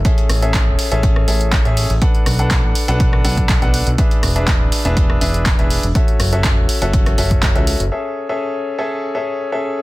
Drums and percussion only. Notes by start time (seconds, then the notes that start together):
0.05 kick, closed hi-hat
0.18 closed hi-hat
0.29 cross-stick, closed hi-hat, open hi-hat
0.42 closed hi-hat
0.54 kick, snare, clap, closed hi-hat
0.79 snare, closed hi-hat, open hi-hat
0.92 closed hi-hat
1.03 kick, closed hi-hat
1.16 cross-stick
1.28 closed hi-hat, open hi-hat
1.41 closed hi-hat
1.52 kick, snare, clap, closed hi-hat
1.65 closed hi-hat
1.77 open hi-hat
1.90 closed hi-hat
2.02 kick, closed hi-hat
2.15 closed hi-hat
2.26 cross-stick, closed hi-hat, open hi-hat
2.39 closed hi-hat
2.51 kick, snare, clap, closed hi-hat
2.75 closed hi-hat, open hi-hat
2.88 closed hi-hat
3.00 kick, closed hi-hat
3.13 cross-stick
3.25 snare, closed hi-hat, open hi-hat
3.37 kick, closed hi-hat
3.49 kick, snare, clap, closed hi-hat
3.62 closed hi-hat
3.74 closed hi-hat, open hi-hat
3.87 closed hi-hat
3.98 kick, closed hi-hat
4.11 closed hi-hat
4.23 cross-stick, closed hi-hat, open hi-hat
4.36 closed hi-hat
4.48 kick, snare, clap, closed hi-hat
4.72 snare, closed hi-hat, open hi-hat
4.85 closed hi-hat
4.97 kick, closed hi-hat
5.10 cross-stick
5.21 closed hi-hat, open hi-hat
5.34 closed hi-hat
5.46 kick, snare, clap, closed hi-hat
5.59 closed hi-hat
5.70 open hi-hat
5.83 closed hi-hat
5.95 kick, closed hi-hat
6.08 closed hi-hat
6.20 cross-stick, closed hi-hat, open hi-hat
6.33 closed hi-hat
6.44 kick, snare, clap, closed hi-hat
6.69 closed hi-hat, open hi-hat
6.82 closed hi-hat
6.93 kick, closed hi-hat
7.06 cross-stick, closed hi-hat
7.18 closed hi-hat, open hi-hat
7.31 kick, closed hi-hat
7.43 kick, snare, clap, closed hi-hat
7.55 closed hi-hat
7.67 closed hi-hat, open hi-hat
7.80 closed hi-hat